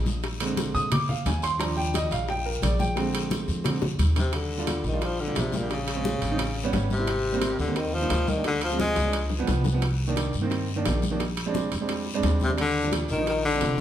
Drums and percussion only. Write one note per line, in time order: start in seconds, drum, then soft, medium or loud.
0.06 high bongo soft
0.06 high conga medium
0.06 short guiro medium
0.23 high bongo medium
0.23 high conga soft
0.23 high timbale medium
0.23 long guiro medium
0.40 high bongo soft
0.40 high conga soft
0.40 high timbale medium
0.57 high bongo medium
0.57 high conga medium
0.57 high timbale medium
0.57 short guiro medium
0.75 high bongo soft
0.75 high conga soft
0.75 short guiro medium
0.92 high bongo medium
0.92 high conga soft
0.92 low conga medium
0.92 high timbale loud
0.92 long guiro medium
1.09 high conga soft
1.09 low conga medium
1.26 high bongo soft
1.26 low bongo medium
1.26 high conga medium
1.26 high timbale medium
1.26 low timbale medium
1.26 short guiro medium
1.42 high bongo soft
1.42 high timbale medium
1.42 short guiro medium
1.60 high bongo medium
1.60 high conga soft
1.60 high timbale medium
1.60 long guiro medium
1.77 high bongo soft
1.77 high conga soft
1.94 high bongo medium
1.94 high conga medium
1.94 high timbale medium
1.94 short guiro medium
2.11 high bongo soft
2.11 high conga soft
2.11 high timbale medium
2.11 short guiro medium
2.28 high bongo medium
2.28 high conga soft
2.28 long guiro medium
2.46 high conga soft
2.62 high bongo soft
2.62 low bongo medium
2.62 high conga medium
2.62 high timbale medium
2.62 short guiro medium
2.79 high bongo soft
2.79 high conga medium
2.79 short guiro medium
2.96 high bongo medium
2.96 high conga soft
2.96 high timbale medium
2.96 long guiro medium
3.14 high bongo soft
3.14 high conga soft
3.14 high timbale medium
3.30 high bongo medium
3.30 high conga medium
3.30 high timbale medium
3.30 short guiro medium
3.48 high bongo soft
3.48 high conga soft
3.48 short guiro medium
3.64 high bongo loud
3.64 high conga soft
3.64 low conga medium
3.64 high timbale loud
3.64 long guiro medium
3.82 high bongo loud
3.82 high conga soft
3.82 low conga medium
3.99 high conga medium
3.99 high timbale medium
3.99 short guiro medium
4.16 low bongo medium
4.16 high conga medium
4.16 high timbale medium
4.16 short guiro medium
4.33 high bongo medium
4.33 high conga soft
4.33 high timbale medium
4.33 long guiro medium
4.51 high conga soft
4.67 high bongo medium
4.67 high conga medium
4.67 high timbale medium
4.67 low timbale medium
4.67 short guiro medium
4.84 high conga soft
4.84 short guiro medium
5.01 high bongo medium
5.01 high conga soft
5.01 high timbale medium
5.01 long guiro medium
5.20 high conga soft
5.35 high bongo medium
5.35 low bongo medium
5.35 high conga soft
5.35 high timbale medium
5.35 low timbale medium
5.35 short guiro medium
5.52 high conga medium
5.52 short guiro medium
5.70 high bongo medium
5.70 high conga soft
5.70 high timbale medium
5.70 long guiro medium
5.88 high bongo soft
5.88 high conga soft
5.88 high timbale medium
6.04 high bongo medium
6.04 high conga medium
6.04 low timbale medium
6.04 short guiro medium
6.22 high bongo soft
6.22 high conga soft
6.22 high timbale medium
6.22 short guiro medium
6.38 high bongo medium
6.38 high conga soft
6.38 high timbale medium
6.38 long guiro medium
6.56 high bongo soft
6.56 high conga soft
6.73 high bongo medium
6.73 low bongo medium
6.73 high conga medium
6.73 high timbale medium
6.73 low timbale medium
6.73 short guiro medium
6.90 high conga medium
6.90 short guiro medium
7.07 high bongo medium
7.07 high conga soft
7.07 high timbale medium
7.07 long guiro medium
7.25 high conga soft
7.41 high bongo medium
7.41 high conga medium
7.41 high timbale medium
7.41 low timbale medium
7.41 short guiro medium
7.59 high conga soft
7.59 short guiro medium
7.76 high bongo medium
7.76 high conga soft
7.76 high timbale medium
7.76 long guiro medium
7.94 high conga soft
8.10 high bongo medium
8.10 low bongo medium
8.10 high conga soft
8.10 high timbale medium
8.10 low timbale medium
8.10 short guiro medium
8.27 high conga medium
8.27 short guiro medium
8.44 high bongo medium
8.44 high conga soft
8.44 high timbale medium
8.44 long guiro medium
8.61 high bongo soft
8.61 high conga soft
8.61 high timbale medium
8.79 high bongo medium
8.79 high conga medium
8.79 low timbale medium
8.79 short guiro medium
8.96 high bongo medium
8.96 high conga soft
8.96 high timbale medium
8.96 short guiro medium
9.13 high conga soft
9.13 high timbale medium
9.13 long guiro medium
9.30 low bongo medium
9.30 high conga soft
9.47 low bongo medium
9.47 high conga medium
9.47 high timbale medium
9.47 low timbale medium
9.47 short guiro medium
9.64 low bongo medium
9.64 high conga medium
9.64 short guiro medium
9.82 high bongo medium
9.82 high conga soft
9.82 high timbale medium
9.82 long guiro medium
10.00 high conga soft
10.16 high bongo medium
10.16 high conga medium
10.16 high timbale medium
10.16 low timbale medium
10.16 short guiro medium
10.33 high conga soft
10.33 short guiro medium
10.50 high bongo medium
10.50 high conga soft
10.50 high timbale medium
10.50 long guiro medium
10.69 high conga soft
10.85 high bongo medium
10.85 low bongo medium
10.85 high conga soft
10.85 high timbale medium
10.85 low timbale medium
10.85 short guiro medium
11.02 high conga medium
11.02 short guiro medium
11.20 high bongo medium
11.20 high conga soft
11.20 high timbale medium
11.20 long guiro medium
11.37 high bongo soft
11.37 high conga soft
11.37 high timbale medium
11.54 high bongo medium
11.54 high conga medium
11.54 low timbale medium
11.54 short guiro medium
11.72 high bongo soft
11.72 high conga soft
11.72 high timbale medium
11.72 short guiro medium
11.89 high bongo medium
11.89 high conga soft
11.89 high timbale medium
11.89 long guiro medium
12.06 high bongo soft
12.06 high conga soft
12.23 high bongo medium
12.23 low bongo medium
12.23 high conga medium
12.23 high timbale medium
12.23 low timbale medium
12.23 short guiro medium
12.40 high conga medium
12.40 short guiro medium
12.57 high bongo medium
12.57 high conga soft
12.57 high timbale medium
12.57 long guiro medium
12.76 high conga soft
12.92 high bongo medium
12.92 high conga medium
12.92 high timbale medium
12.92 low timbale medium
12.92 short guiro medium
13.08 high conga soft
13.08 short guiro medium
13.26 high bongo medium
13.26 high conga soft
13.26 high timbale medium
13.26 long guiro medium
13.44 high conga soft
13.61 high bongo medium
13.61 low bongo medium
13.61 high conga soft
13.61 high timbale medium
13.61 low timbale medium
13.61 short guiro medium